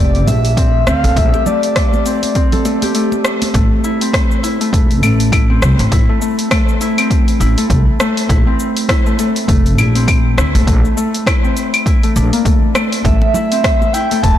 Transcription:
Already playing: F1 A3 C4 G4 A4 D5
0.15 open hi-hat, high conga
0.27 A#1 E5, open hi-hat, muted conga, low conga, cabasa
0.45 open hi-hat, cabasa
0.57 C4, kick, open hi-hat, cabasa
0.87 D2 C4 F5, cross-stick, muted conga, cabasa
1.04 A#1 A4, open hi-hat, cabasa
1.16 A#1 A3 E5, kick, open hi-hat, low conga, cabasa
1.33 G4, muted conga, cabasa
1.46 A3 D5, low conga, cabasa
1.63 open hi-hat, cabasa
1.76 kick, cross-stick, open hi-hat, cabasa
1.93 high conga, cabasa
2.05 C4, open hi-hat, cabasa
2.23 open hi-hat, high conga, cabasa
2.35 C4, kick, open hi-hat, cabasa
2.52 A4, open hi-hat, low conga, cabasa
2.65 A3, open hi-hat, muted conga, cabasa
2.82 G4, open hi-hat, high conga, cabasa
2.95 A3, open hi-hat, cabasa
3.12 muted conga, cabasa
3.25 cross-stick, cabasa
3.42 open hi-hat, muted conga, cabasa
3.54 A1 A3, kick, open hi-hat, cabasa
3.84 E4, cabasa
4.01 C4, open hi-hat, cabasa
4.13 kick, cross-stick, open hi-hat, cabasa
4.31 cabasa
4.43 E4, open hi-hat, cabasa
4.61 A3, open hi-hat, cabasa
4.73 E1 A3, kick, open hi-hat, cabasa
4.91 open hi-hat, cabasa
5.03 A1 A3, open hi-hat, cabasa, claves
5.20 open hi-hat, cabasa
5.32 E4, kick, open hi-hat, cabasa, claves
5.50 C4
5.62 C2, cross-stick, cabasa
5.79 A1, open hi-hat, cabasa
5.92 A1 E4, kick, open hi-hat, cabasa
6.09 A3
6.21 A3, cabasa
6.39 open hi-hat, cabasa
6.51 A3, kick, cross-stick, open hi-hat, cabasa, claves
6.69 cabasa
6.81 E4, open hi-hat, cabasa
6.98 C4, open hi-hat, cabasa, claves
7.10 kick, open hi-hat, cabasa
7.28 open hi-hat, cabasa
7.40 A1 E4, open hi-hat, cabasa
7.58 A3, open hi-hat, cabasa
7.70 C2 A3, kick, open hi-hat, cabasa
8.00 A3, cross-stick, cabasa
8.17 open hi-hat, cabasa
8.29 A#1 E4, kick, open hi-hat, cabasa
8.47 C4
8.60 cabasa
8.77 open hi-hat, cabasa
8.89 E4, kick, cross-stick, open hi-hat, cabasa
9.06 A3, cabasa
9.19 A3, open hi-hat, cabasa
9.36 open hi-hat, cabasa
9.48 F1 A3, kick, open hi-hat, cabasa
9.66 open hi-hat, cabasa
9.78 A#1 E4, open hi-hat, cabasa, claves
9.95 C4, open hi-hat, cabasa
10.08 kick, open hi-hat, cabasa, claves
10.37 D2 E4, cross-stick, cabasa
10.55 A#1 A3, open hi-hat, cabasa
10.67 A#1 A3, kick, open hi-hat, cabasa
10.85 cabasa
10.97 A3, cabasa
11.14 open hi-hat, cabasa
11.27 E4, kick, cross-stick, open hi-hat, cabasa, claves
11.44 C4, cabasa
11.57 open hi-hat, cabasa
11.74 open hi-hat, cabasa, claves
11.86 E4, kick, open hi-hat, cabasa
12.03 A3, open hi-hat, cabasa
12.16 A#1 D4, open hi-hat, cabasa
12.33 A#3, open hi-hat, cabasa
12.45 D2 A3, kick, open hi-hat, cabasa
12.75 A3, cross-stick, cabasa, claves
12.92 open hi-hat, cabasa
13.05 A1 A3 E5, kick, open hi-hat, low conga, cabasa
13.22 muted conga
13.34 E4, high conga, low conga, cabasa
13.52 C4, open hi-hat, cabasa
13.64 kick, cross-stick, open hi-hat, cabasa
13.82 high conga, cabasa
13.93 E4 G5, open hi-hat, cabasa
14.11 A3, open hi-hat, high conga, cabasa
14.23 E1 A3 A5, kick, open hi-hat, cabasa

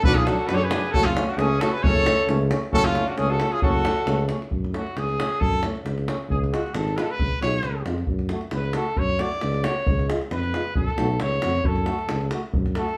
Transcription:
0.04 B1 F#3 D4 F#4 B4, davul low
0.15 F4 G#4, davul high
0.26 F#3 D4 F#4 A4, davul high
0.39 davul high
0.47 F#2 F#3 D4 F#4 B4, davul high
0.54 A4 C#5
0.61 G#4 B4, davul high
0.71 F#3 D4, davul high
0.91 F#1 C#4 F#4 A4, davul low
0.96 A3
1.05 C#4 F4
1.17 A3 C#4, davul high
1.27 D4 F#4, davul high
1.37 C#2 A3 C#4 G#4, davul high
1.60 A3 C#4 F#4 A4, davul high
1.72 G#4 B4
1.83 F#1 A3 C#4 A4 C#5, davul low
2.06 A3 C#4, davul high
2.19 davul high
2.28 C#2 A3 C#4, davul high
2.50 A3 C#4, davul high
2.63 davul high
2.72 F#1 A3 C#4 F#4 A4, davul low
2.85 C#4 F4
2.94 A3 C#4, davul high
3.07 D4 F#4, davul high
3.16 C#2 A3 C#4 G#4, davul high
3.30 F#4 A4
3.40 A3 C#4, davul high
3.52 F4 G#4, davul high
3.62 F#1 A3 C#4 F#4 A4, davul low
3.84 A3 C#4, davul high
3.97 davul high
4.06 C#2 A3 C#4, davul high
4.19 davul high
4.29 A3 C#4, davul high
4.42 davul high
4.51 F#2, davul low
4.64 davul high
4.73 A3 C#4 F#4, davul high
4.87 davul high
4.96 C#2 G#4, davul high
5.09 davul high
5.18 A3 C#4, davul high
5.40 F#2 A4, davul low
5.53 davul high
5.62 A3 C#4, davul high
5.75 davul high
5.85 C#2, davul high
5.98 davul high
6.08 A3 C#4, davul high
6.29 C#2 G#4, davul low
6.44 davul high
6.52 G#3 F4 F#4, davul high
6.66 davul high
6.73 G#1 A4, davul high
6.88 davul high
6.97 G#3 F4 B4, davul high
7.03 A4
7.11 B4
7.19 C#2, davul low
7.41 B1 G#3 F4 C#5, davul high
7.63 C#2, davul high
7.86 F2 G#3 F4, davul high
7.98 davul high
8.07 F#2, davul low
8.19 davul high
8.29 A3 F#4, davul high
8.41 davul high
8.51 C#2 B4, davul high
8.64 davul high
8.73 A3 F#4 A4, davul high
8.96 F#2 C#5, davul low
9.09 davul high
9.19 A3 F#4 D5, davul high
9.32 davul high
9.41 C#2, davul high
9.54 davul high
9.64 A3 F#4 C#5, davul high
9.87 C#2, davul low
9.99 davul high
10.08 G#3 F4, davul high
10.21 davul high
10.31 F2 B4, davul high
10.43 davul high
10.53 G#3 F4, davul high
10.75 F#2 A4, davul low
10.88 davul high
10.98 B1 A3 F#4, davul high
11.20 C#2 C#5, davul high
11.32 davul high
11.42 F2 A3 F#4, davul high
11.54 davul high
11.64 F#2 A4, davul low
11.76 davul high
11.86 A3 F#4, davul high
11.99 davul high
12.09 C#2, davul high
12.21 davul high
12.31 A3 F#4, davul high
12.53 F#2, davul low
12.66 davul high
12.75 A3 F#4 A4, davul high
12.89 davul high

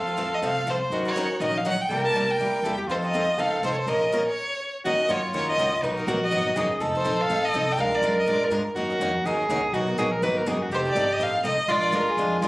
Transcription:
Already playing: F2 F3 C4 F4 A4 C5 F5
0.06 C4 F4 A4
0.17 F3 A3 C4 F4 A4 C5
0.34 D#5
0.42 C2 F3 A3 C4 F4 A4 C5 F5
0.67 F3 A3 C4 F4 A4 C5
0.90 D#2 D#3 F#3 C#4 D#4 F#4 A#4
1.05 C#4 D#4 A#4 C#5
1.16 D#3 F#3 C#4 D#4 A#4
1.40 A#1 D#3 F#3 C#4 D#4 A#4 D#5
1.57 F5
1.65 D#3 F#3 C#4 D#4 A#4 F#5
1.81 G5
1.89 C2 C3 G3 A#3 E4 G4 A#4
2.04 A#3 E4 G4 A5
2.14 C2 C3 G3 A#3 E4 G4
2.31 G5
2.38 D2 C3 G3 A#3 E4 G4
2.63 E2 C3 G3 A#3 E4 G4 A4
2.77 G4
2.87 F2 F3 C4 D#4 F4 A4 C5
3.02 C4 D#4 A4 D#5
3.13 F3 C4 D#4 A4
3.37 C#2 F3 C4 D#4 A4 F5
3.63 C2 F3 C4 D#4 A4 C5
3.74 C#5
3.80 C5
3.87 A#1 F3 A#3 C#4 F4 A#4 D#5
4.01 C#4 F4 A#4
4.12 F3 A#3 C#4 F4 A#4
4.29 C#5
4.85 D#3 F#3 A#3 C#4 D#4 F#4 A#4 D#5
4.98 C#4 D#4 A#4
5.09 F#2 D#3 F#3 A#3 C#4 D#4 F4 F#4 A#4 C#5
5.33 D#2 D#3 F#3 A#3 C#4 D#4 F#4 A#4 C#5
5.49 D#5
5.58 C#2 D#3 F#3 A#3 C#4 D#4 F#4 A#4
5.83 B1 B2 D#3 F#3 A#3 B3 D#4 F#4 A#4 B4
5.97 A#3 D#4 F#4 A#4
6.07 A#1 B2 D#3 F#3 A#3 B3 D#4 F#4 A#4
6.23 D#5
6.31 G#1 B2 D#3 F#3 A#3 B3 D#4 F#4 A#4
6.56 F#1 B2 D#3 F#3 A#3 B3 D#4 F#4 G#4 A#4
6.80 F1 F3 C4 D#4 A4
6.95 C4 D#4 A4 C5
7.05 A#1 F3 C4 D#4 A4
7.21 F5
7.30 A1 F3 C4 D#4 A4
7.45 D#5
7.53 C2 F3 C4 D#4 A4
7.72 G5
7.77 D2 F3 G#3 D4 F4 A#4 F5
7.91 D4 F4 A#4
7.95 D5
8.02 F#2 F3 G#3 D4 F4 A#4
8.20 D#5
8.26 A#2 F3 G#3 D4 F4 A#4
8.31 D5
8.44 A#4
8.50 G#2 F3 G#3 D4 F4 A#4
8.75 F#2 D#3 F#3 A#3 C#4 D#4 F#4 A#4
8.90 C#4 D#4 A#4
9.00 F2 D#3 F#3 A#3 C#4 D#4 F#4 A#4
9.24 D#2 D#3 F#3 A#3 C#4 D#4 F#4 G#4 A#4
9.49 C#2 D#3 F#3 A#3 C#4 D#4 F#4 A#4
9.73 B1 B2 D#3 F#3 A#3 B3 D#4 F#4 A#4
9.87 A#3 D#4 F#4
9.98 A#1 B2 D#3 F#3 A#3 B3 D#4 F#4 G#4 A#4
10.12 A#4
10.22 G#1 B2 D#3 F#3 A#3 B3 D#4 F#4 A#4 B4
10.37 A#4
10.46 F#1 B2 D#3 F#3 A#3 B3 D#4 F#4 G#4 A#4
10.62 F#4
10.70 F1 F3 C4 D#4 G4 A4
10.75 C5
10.85 C4 D#4 A4 D5
10.95 G1 F3 C4 D#4 A4
11.13 D#5
11.19 A1 F3 C4 D#4 A4 F5
11.44 C2 F3 C4 D#4 A4 D#5
11.57 muted upright bass stroke
11.68 A#1 F3 G#3 D4 F4 A#4 D5
11.81 D4 F4 A#4
11.92 D2 F3 G#3 D4 F4 A#4
12.09 G#4
12.17 F2 F3 G#3 D4 F4 A#4
12.41 G#2 F3 G#3 D4 F4 A#4

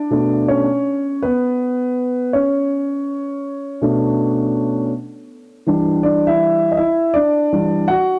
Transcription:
Already playing: D4 D5
0.10 B2 A3 D4
0.48 C#4 C#5
1.22 B3 B4
2.33 C#4 C#5
3.81 B2 A3 D4
5.67 E3 G3 D4
6.03 D4 D5
6.27 E4 E5
6.72 D#5
6.77 E4 E5
7.14 D4 D5
7.52 E3 G3 D4
7.88 F#4 F#5

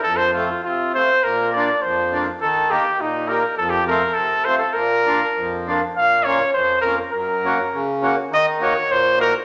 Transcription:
0.03 F2 A4
0.17 C5
0.33 A3 C4 F4
0.63 C3 F4
0.94 A3 C4 F4 C5
1.24 A#2 A#4
1.52 A#3 D4 D5
1.56 F4
1.82 F2 C5
2.12 A#3 D4 F4
2.41 D#3 A4
2.70 A#3 D#4 G4
2.99 A#2 D#4
3.28 A#3 D#4 G4 A#4
3.57 F2 A4
3.70 G4
3.87 A3 C4 F4 A#4
4.14 C3 A4
4.45 A3 C4 F4 C5
4.58 A4
4.73 A#2 A#4
5.06 A#3 D4 F4
5.36 F2
5.66 A#3 D4 F4
5.95 A#2 F5
6.25 A#3 C#4 F4 C#5
6.53 F2 C5
6.81 A#3 A#4
6.86 C#4 F4
7.12 F#2 A#4
7.44 A#3 C#4 F#4
7.73 C#3
8.02 A#3 C#4 F#4
8.31 D#3 D#5
8.60 A#3 D#4 F#4 C#5
8.90 A#2 C5
9.18 A#3 D#4 F#4 A#4

